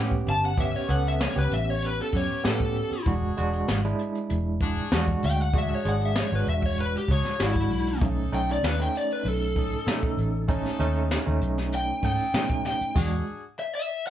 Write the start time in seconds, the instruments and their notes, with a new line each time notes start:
Already playing: fingered electric bass A2, horn section B3 C#4 G4, tine electric piano B3 C#4 G4
0.11 kick
0.26 fingered electric bass G1, lead electric guitar A5, closed hi-hat
0.46 lead electric guitar F#5
0.57 horn section B3 C#4 G4, tine electric piano B3 C#4 G4, lead electric guitar E5, kick, closed hi-hat
0.76 lead electric guitar C#5
0.88 fingered electric bass C#2, tine electric piano B3 C#4 A4, lead electric guitar F#5, closed hi-hat
1.05 lead electric guitar E5, closed hi-hat
1.20 lead electric guitar C#5, snare, closed hi-hat
1.35 fingered electric bass C#2, tine electric piano B3 C#4 G4, lead electric guitar B4
1.51 fingered electric bass A1, lead electric guitar E5, closed hi-hat
1.70 lead electric guitar C#5
1.82 closed hi-hat
1.87 lead electric guitar B4
2.02 lead electric guitar A4
2.13 fingered electric bass F#2, horn section B3 C#4 G4, lead electric guitar C#5, kick, closed hi-hat
2.29 closed hi-hat
2.44 fingered electric bass A2, tine electric piano B3 C#4 G4, lead electric guitar A4, snare, closed hi-hat
2.60 kick, closed hi-hat
2.75 closed hi-hat
2.91 muted fingered electric bass stroke, closed hi-hat
3.06 fingered electric bass E1, tine electric piano G#3 D4 F#4, horn section D4 F#4 G#4, kick, closed hi-hat
3.37 fingered electric bass E1, tine electric piano G#3 D4 F#4, closed hi-hat
3.53 closed hi-hat
3.68 fingered electric bass G#1, snare, closed hi-hat
3.84 tine electric piano G#3 D4 E4, closed hi-hat
3.99 closed hi-hat
4.15 closed hi-hat
4.30 fingered electric bass E1, closed hi-hat
4.60 horn section D4 F#4 G#4, kick, closed hi-hat
4.91 fingered electric bass E2, tine electric piano G#3 D4 F#4, snare, closed hi-hat
5.08 kick
5.23 fingered electric bass D2, lead electric guitar G5, closed hi-hat
5.42 lead electric guitar F#5
5.53 tine electric piano G#3 D4 F#4, horn section D4 F#4 G#4, kick, closed hi-hat
5.58 lead electric guitar E5
5.75 lead electric guitar C#5
5.85 fingered electric bass G#1, tine electric piano G#3 D4 G#4, closed hi-hat
5.89 lead electric guitar F#5
6.01 closed hi-hat
6.05 lead electric guitar E5
6.15 snare, closed hi-hat
6.19 lead electric guitar C#5
6.32 fingered electric bass G#1, tine electric piano G#3 D4 F#4, lead electric guitar B4
6.46 fingered electric bass E1, lead electric guitar E5, closed hi-hat
6.62 lead electric guitar C#5, kick
6.77 lead electric guitar B4, closed hi-hat
6.98 lead electric guitar G4
7.08 fingered electric bass C#2, horn section D4 F#4 G#4, lead electric guitar C#5, kick, closed hi-hat
7.24 snare, closed hi-hat
7.39 fingered electric bass G#1, tine electric piano G#3 D4 F#4, lead electric guitar E4, snare, closed hi-hat
7.55 kick, closed hi-hat
7.71 fingered electric bass B1, open hi-hat
7.87 closed hi-hat
8.00 fingered electric bass B1, tine electric piano A3 C#4 D#4, horn section C#4 D#4 A4, kick, closed hi-hat
8.32 fingered electric bass B1, tine electric piano A3 C#4 D#4, lead electric guitar G5, closed hi-hat
8.49 lead electric guitar D5, closed hi-hat
8.63 fingered electric bass D#2, snare, closed hi-hat
8.67 lead electric guitar B4
8.79 tine electric piano A3 C#4 D#4, lead electric guitar G5, closed hi-hat
8.95 lead electric guitar D5, closed hi-hat
9.11 lead electric guitar B4, closed hi-hat
9.25 fingered electric bass B1, lead electric guitar A4, closed hi-hat
9.55 horn section C#4 D#4 A4, kick, closed hi-hat
9.86 fingered electric bass B2, tine electric piano A3 C#4 D#4, snare, closed hi-hat
10.03 kick
10.18 fingered electric bass A1, closed hi-hat
10.47 tine electric piano A3 C#4 D#4, horn section C#4 D#4 A4, kick, closed hi-hat
10.66 snare
10.79 fingered electric bass D#2, tine electric piano A3 C#4 D#4, closed hi-hat
10.96 closed hi-hat
11.11 snare, closed hi-hat
11.26 fingered electric bass D#2, tine electric piano A3 C#4 D#4
11.41 fingered electric bass B1, closed hi-hat
11.58 snare
11.72 lead electric guitar G5, closed hi-hat
12.02 fingered electric bass G#2, horn section C#4 D#4 A4, lead electric guitar G5, kick, closed hi-hat
12.19 closed hi-hat
12.34 fingered electric bass B2, tine electric piano A3 C#4 D#4, snare, closed hi-hat
12.49 kick, closed hi-hat
12.65 lead electric guitar G5, snare, closed hi-hat
12.81 muted fingered electric bass stroke, closed hi-hat
12.94 fingered electric bass E2, tine electric piano G#3 D4 F#4, horn section D4 F#4 G#4, kick, closed hi-hat, crash
13.60 lead electric guitar E5
13.75 lead electric guitar E5